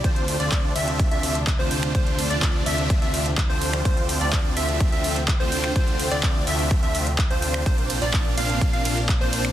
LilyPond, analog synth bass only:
\new Staff \with { instrumentName = "Analog synth bass" } { \clef bass \time 4/4 \key d \minor \tempo 4 = 126 d,8. d,8. d,8. d,4 d,8. | d,8. d,8. d,8. d,4 d,8. | d,8. d,8. d,8. d,4 d,8. | d,8. d,8. d,8. d,4 d,8. |
bes,,8. bes,,8. bes,,8. bes,,4 bes,,8. | }